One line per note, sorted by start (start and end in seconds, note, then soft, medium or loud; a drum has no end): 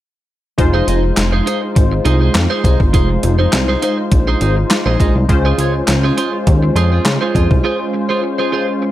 0.58 0.82 F1 loud
0.58 5.25 G#3 medium
0.58 5.25 D#4 medium
0.58 5.25 F4 medium
0.58 5.26 C5 medium
0.58 muted clean electric guitar stroke soft
0.58 kick loud
0.58 closed hi-hat medium
0.74 0.86 D#4 medium
0.74 0.87 G#4 medium
0.74 0.88 C5 medium
0.87 1.12 F1 loud
0.87 1.04 D#4 medium
0.87 1.03 G#4 medium
0.87 1.03 D#5 medium
0.87 closed hi-hat medium
1.03 muted clean electric guitar stroke soft
1.17 1.41 F1 loud
1.17 muted clean electric guitar stroke soft
1.17 snare loud
1.17 clap medium
1.17 closed hi-hat loud
1.32 1.45 D#4 soft
1.32 1.46 G#4 medium
1.32 1.46 C5 medium
1.46 1.66 D#4 medium
1.46 1.62 G#4 medium
1.46 1.61 C5 loud
1.46 closed hi-hat medium
1.62 muted clean electric guitar stroke soft
1.76 2.00 G#1 loud
1.76 muted clean electric guitar stroke soft
1.76 kick loud
1.76 closed hi-hat medium
1.92 muted clean electric guitar stroke soft
2.05 2.30 C2 loud
2.05 2.21 D#4 medium
2.05 2.20 G#4 medium
2.05 2.20 C5 medium
2.05 closed hi-hat medium
2.21 2.33 D#4 soft
2.21 2.34 G#4 medium
2.21 2.34 C5 medium
2.35 2.48 F2 loud
2.35 snare loud
2.35 clap medium
2.35 closed hi-hat medium
2.50 2.63 D#4 medium
2.50 2.63 G#4 medium
2.50 2.64 C5 medium
2.64 2.77 C2 medium
2.64 2.80 D#4 medium
2.64 2.79 G#4 medium
2.64 2.79 C5 medium
2.64 kick medium
2.64 closed hi-hat medium
2.80 2.95 G1 medium
2.80 muted clean electric guitar stroke soft
2.80 kick medium
2.93 3.18 F1 loud
2.93 3.13 D#4 medium
2.93 3.09 G#4 medium
2.93 3.08 C5 medium
2.93 kick medium
2.93 closed hi-hat medium
3.09 muted clean electric guitar stroke soft
3.23 3.47 F1 loud
3.23 muted clean electric guitar stroke soft
3.23 closed hi-hat medium
3.39 3.52 D#4 soft
3.39 3.52 G#4 medium
3.39 3.52 C5 medium
3.53 3.77 C2 loud
3.53 muted clean electric guitar stroke soft
3.53 snare loud
3.53 clap medium
3.53 closed hi-hat medium
3.68 3.81 D#4 medium
3.68 3.82 G#4 medium
3.68 3.82 C5 medium
3.82 4.02 D#4 medium
3.82 3.98 G#4 medium
3.82 3.97 C5 medium
3.82 closed hi-hat medium
3.98 muted clean electric guitar stroke soft
4.12 4.36 A#1 medium
4.12 muted clean electric guitar stroke soft
4.12 kick loud
4.12 closed hi-hat medium
4.27 4.40 D#4 medium
4.27 4.41 G#4 medium
4.27 4.41 C5 medium
4.41 4.65 G#1 loud
4.41 4.57 D#4 medium
4.41 4.56 G#4 medium
4.41 4.56 C5 medium
4.41 closed hi-hat medium
4.57 muted clean electric guitar stroke soft
4.70 muted clean electric guitar stroke soft
4.70 snare loud
4.70 clap medium
4.70 closed hi-hat medium
4.86 4.97 A#1 medium
4.86 4.99 D#4 medium
4.86 4.99 G#4 medium
4.86 5.01 C5 medium
5.00 5.12 A#1 medium
5.00 5.16 D#4 medium
5.00 5.15 G#4 medium
5.00 5.15 D#5 medium
5.00 kick medium
5.00 closed hi-hat medium
5.15 5.26 C2 medium
5.15 muted clean electric guitar stroke soft
5.29 5.53 C#2 loud
5.29 8.92 G#3 medium
5.29 8.92 C#4 medium
5.29 8.92 F4 medium
5.29 8.92 C5 medium
5.29 muted clean electric guitar stroke soft
5.29 kick loud
5.29 closed hi-hat medium
5.45 5.58 F4 medium
5.45 5.58 G#4 medium
5.45 5.60 C5 medium
5.58 5.82 C#2 medium
5.58 5.75 F4 medium
5.58 5.74 G#4 medium
5.58 5.74 C#5 medium
5.58 closed hi-hat medium
5.74 muted clean electric guitar stroke soft
5.88 6.12 C#2 loud
5.88 muted clean electric guitar stroke soft
5.88 snare loud
5.88 clap medium
5.88 closed hi-hat medium
6.03 6.16 F4 medium
6.03 6.17 G#4 medium
6.03 6.17 C5 medium
6.17 6.37 F4 medium
6.17 6.33 G#4 medium
6.17 6.32 C5 medium
6.17 closed hi-hat medium
6.33 muted clean electric guitar stroke soft
6.47 6.71 D#2 loud
6.47 muted clean electric guitar stroke soft
6.47 kick loud
6.47 closed hi-hat medium
6.63 muted clean electric guitar stroke soft
6.75 7.00 F2 medium
6.75 6.92 F4 medium
6.75 6.91 G#4 medium
6.75 6.90 C5 medium
6.75 closed hi-hat medium
6.92 7.04 F4 medium
6.92 7.05 G#4 medium
6.92 7.05 C5 medium
7.05 7.18 C#3 loud
7.05 snare loud
7.05 clap medium
7.05 closed hi-hat medium
7.21 7.33 F4 medium
7.21 7.34 G#4 medium
7.21 7.35 C5 medium
7.35 7.48 F2 loud
7.35 7.51 F4 medium
7.35 7.50 G#4 medium
7.35 7.49 C5 medium
7.35 kick medium
7.35 closed hi-hat medium
7.50 7.62 C2 medium
7.50 muted clean electric guitar stroke soft
7.50 kick medium
7.64 7.84 F4 medium
7.64 7.79 G#4 medium
7.64 7.79 C5 medium
7.80 muted clean electric guitar stroke soft
7.94 muted clean electric guitar stroke soft
8.09 8.22 F4 medium
8.09 8.22 G#4 soft
8.09 8.23 C5 medium
8.23 muted clean electric guitar stroke soft
8.38 8.51 F4 soft
8.38 8.52 G#4 medium
8.38 8.52 C5 medium
8.52 8.72 F4 medium
8.52 8.68 G#4 medium
8.52 8.67 C5 medium
8.68 muted clean electric guitar stroke soft
8.82 muted clean electric guitar stroke soft